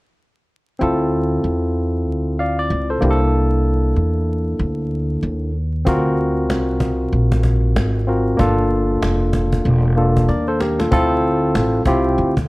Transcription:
0.79 D2 C4 E4 F4 A4
1.44 E2
2.07 D2
2.39 D5 F5
2.59 D5
2.70 C#2
2.90 A4 C5
3.01 C2 A#3 D4 E4 G4
3.11 A4
3.96 E2
4.59 D2
5.23 D#2
5.85 D2 C4 F4 F#4 A#4, cajon bass
6.19 cajon slap
6.49 C2, cajon slap
6.80 cajon bass
7.13 A#1, cajon slap
7.32 cajon bass
7.43 cajon bass
7.63 cajon slap
7.76 G#1, cajon slap
8.07 C4 F4 F#4 A#4, cajon slap
8.37 G1 A#3 D4 F4 A4, cajon bass
8.71 cajon slap
9.02 F1, cajon slap
9.33 cajon bass
9.52 cajon bass
9.65 E1, cajon slap
9.96 A#3 D4 F4 A4, cajon slap
10.17 cajon bass
10.28 D#2 A#4 D5, cajon slap
10.48 A4 C5
10.60 G4 A#4, cajon slap
10.79 F4 A4, cajon slap
10.91 D2 C4 E4 F4 A4, cajon bass
11.24 cajon slap
11.55 A1, cajon slap
11.85 C2 C4 E4 F4 G4, cajon bass
12.18 D2, cajon slap
12.37 cajon bass

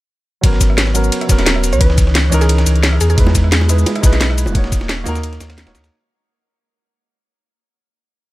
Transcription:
0.41 G#1 F#3 B3 C#4, kick, closed hi-hat, ride
0.46 A#4
0.53 snare
0.61 kick, snare, closed hi-hat, ride, cabasa
0.70 cross-stick
0.78 snare, closed hi-hat, ride
0.87 snare
0.94 F#3 B3 C#4 A#4, closed hi-hat, ride, cabasa
1.04 cabasa
1.12 closed hi-hat, ride
1.21 cross-stick, closed hi-hat, ride
1.27 D#1 F#3 B3 C#4, kick, snare, closed hi-hat, ride, cabasa
1.32 A#4
1.39 cross-stick, snare, closed hi-hat, ride
1.46 snare, closed hi-hat, ride
1.56 cross-stick
1.64 closed hi-hat, ride, cabasa
1.73 C#2 C#5, cabasa
1.78 E3 C#4 D#4 B4, kick, closed hi-hat, ride
1.83 B4
1.90 snare
1.98 kick, snare, closed hi-hat, ride, cabasa
2.07 snare
2.15 snare, closed hi-hat, ride
2.30 C#2 E3 C#4 D#4, closed hi-hat, ride, cabasa
2.34 A#4
2.41 G#4, snare, cabasa
2.49 closed hi-hat, ride
2.58 snare, closed hi-hat
2.66 C#2, closed hi-hat, ride, cabasa
2.76 closed hi-hat
2.83 snare, closed hi-hat, ride
2.93 cross-stick
3.01 E2 G#4, closed hi-hat, ride, cabasa
3.10 G#4, cabasa
3.15 E2 G#3 D#4 E4, kick, closed hi-hat, ride
3.20 B4
3.27 snare, high bongo
3.35 kick, snare, closed hi-hat, ride, cabasa
3.44 cross-stick
3.52 snare, closed hi-hat, ride
3.61 snare, high bongo
3.68 G#3 D#4 E4 B4, closed hi-hat, ride, cabasa
3.78 cabasa
3.86 closed hi-hat, ride, high bongo
3.95 cross-stick, closed hi-hat, ride
4.01 B1 G#3 D#4 E4, kick, snare, closed hi-hat, ride, cabasa
4.06 B4
4.13 cross-stick, snare, closed hi-hat, ride
4.20 snare, closed hi-hat, ride, high bongo
4.30 cross-stick
4.38 closed hi-hat, ride, cabasa
4.46 D#1, high bongo, cabasa
4.52 A#3 D#4 F#4, kick, closed hi-hat, ride
4.57 C#5
4.64 snare
4.72 kick, snare, closed hi-hat, ride, cabasa
4.81 snare, high bongo
4.89 snare, closed hi-hat, ride
5.04 D#2 A#3 D#4 F#4, closed hi-hat, ride, high bongo, cabasa
5.09 A#4
5.15 snare, closed hi-hat, cabasa
5.23 closed hi-hat, ride
5.33 snare, closed hi-hat
5.40 D#2, snare, closed hi-hat, ride, high bongo, cabasa
5.50 snare, closed hi-hat, ride
5.58 snare, closed hi-hat, ride
5.66 D#1 A#3 D#4 F#4 C#5, cross-stick, snare, ride, high bongo
5.75 D#2, snare, closed hi-hat, ride, cabasa
5.84 snare, ride, cabasa

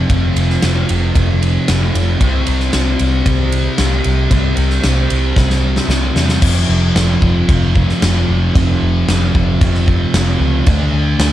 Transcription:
0.09 F1 F2 C3 F3, kick, ride
0.36 F1, ride
0.50 snare
0.62 F1, snare, ride
0.89 F1, ride
1.15 F1, kick, ride
1.43 ride
1.68 F1, snare, ride
1.95 F1, ride
2.20 C2 C3 G3 C4, kick, ride
2.47 C2, ride
2.60 snare
2.73 C2, snare, ride
2.99 C2, ride
3.26 C2, kick, ride
3.52 ride
3.78 C2, snare, ride
4.04 C2, ride
4.30 C2 C3 G3 C4, kick, ride
4.57 C2, ride
4.70 snare
4.84 C2, snare, ride
5.10 C2, ride
5.36 C2, kick, snare
5.50 snare
5.76 snare
5.89 C2, snare
6.16 E2, snare
6.29 snare
6.42 F1 F2 C3 F3, kick, crash
6.69 F1
6.95 F1, snare, crash
7.22 F1, kick
7.49 F1, kick, crash
7.76 kick
7.89 snare
8.02 F1, snare, crash
8.29 F1
8.55 F1 F2 C3 F3, kick, crash
8.82 F1
9.08 F1, snare, crash
9.35 F1, kick
9.61 F1, kick, crash
9.75 snare
9.88 kick
10.14 F1, snare, crash
10.40 C#2
10.66 D2 D3 A3 D4, kick, crash
10.93 D2
11.19 D2, snare, crash

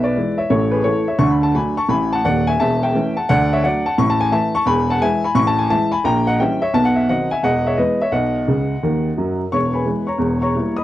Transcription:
Already playing: B1 B2 B4 E5
0.04 B4 D5
0.16 E3 G#3 E4
0.38 C#5 E5
0.50 A1 A2 A4 C#5
0.71 G#4 B4
0.84 E3 A3 E4 A4 C#5
1.08 C#5 E5
1.18 D2 D3 C#6
1.30 B5
1.43 A5
1.54 F#3 A3 D4 G#5 B5
1.77 A5 C#6
1.88 A1 A2 G#5 B5
2.13 F#5 A5
2.24 D#1 D#2 D5 F#5
2.47 E5 G#5
2.60 E1 E2 E5 A5
2.83 E5 G5
2.94 E3 A3 C#4
3.17 F#5 A5
3.29 D2 D3 D5 F#5
3.53 C#5 E5
3.63 F#3 A3 D4 D5 F#5
3.86 F#5 A5
3.98 A1 A2 C#6
4.10 A5
4.21 G#5
4.32 E3 A3 E4 E5 A5
4.55 A5 C#6
4.66 E1 E2 G#5 B5
4.90 F#5 A5
5.01 E3 G#3 E4 E5 G#5
5.24 G#5 B5
5.35 A1 A2 C#6
5.47 A5
5.59 G#5
5.70 E3 G#3 E4 E5 A5
5.92 G#5 B5
6.04 A#1 A#2 G5 A#5
6.27 D#5 F#5
6.39 E3 G3 C#4 E5 G5
6.62 C#5 E5
6.74 B1 B2 A5
6.85 F#5
6.96 E5
7.09 D#3 F#3 C4 D#5 F#5
7.31 E5 G#5
7.43 E1 E2 D#5 F#5
7.66 C#5 E5
7.77 E3 G#3 B3 B4 D#5
8.02 C#5 E5
8.12 B1 B2 D#5 F#5
8.48 C#2 C#3
8.83 D#2 D#3
9.17 F#2 F#3
9.52 E1 E2 C#5 C#6
9.74 B4 G#5 B5
9.85 E3 G#3 B3
10.07 C#5 A#5 C#6
10.18 E1 E2
10.42 C#5 A#5 C#6
10.56 G3 A#3 E4
10.76 D#5 B5 D#6

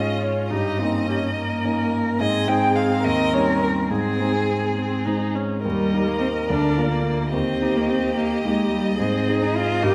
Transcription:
Already playing: G#2 G#3 C#4 F4 D#5
0.23 C#5
0.50 G2 D#4 G4 D#5
0.79 A#3 C4 C#4 D#4
1.07 C#4 G4
1.34 A#3 A#4
1.64 A#3 C#4 D#4
2.19 G#2 C4 G#4 D#5
2.48 G#3 C4 D#4 G5
2.76 F5
3.03 D#2 A#4 D#5
3.33 G3 C#4 D#4 C#5
3.62 A#4
3.90 G#2 C4 G#4
4.20 G#3 C4 D#4
4.76 C4
5.06 G#3 C4 D#4
5.35 C#4
5.64 D#2 G3 A#4 D#5
5.94 A#3 D#4 G4
6.07 A#3
6.19 C4
6.48 D2 D4 D5
6.77 A#3 F4 A#4
6.91 A#3
7.04 A#3
7.32 D#2 C4 G4 D#5
7.62 A#3 D#4 G4
7.77 A#3
7.90 C4
8.17 A#3
8.45 G#3 A#3 D#4 G4
8.72 G3
8.99 G#2 C4 G#4
9.28 C4 D#4 G#4
9.42 D#4
9.56 F4
9.82 G2 G4 A#4

